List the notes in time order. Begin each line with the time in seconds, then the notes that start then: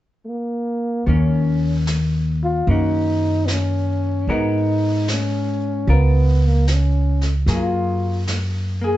0.25 A3 A#3
1.06 D#2 D#3 A#3 C#4, brush sweep
1.87 snare, hi-hat pedal
2.44 F4
2.67 F#2 A#3 C#4 D#4, brush sweep
2.71 F#4
3.46 B3, snare, hi-hat pedal
3.51 C#4
4.27 G#2 G#3 B3 F#4 A#4, brush sweep
4.32 D#4
5.08 C#4, snare, hi-hat pedal
5.87 C#2 F4 A#4, brush sweep
5.93 B3
6.47 A#3
6.67 B3, snare, hi-hat pedal
6.73 C#4
7.21 snare
7.46 F#2 F#3 A#3 G#4, brush sweep, snare
7.52 F4
8.28 snare, hi-hat pedal
8.81 A#3 G#4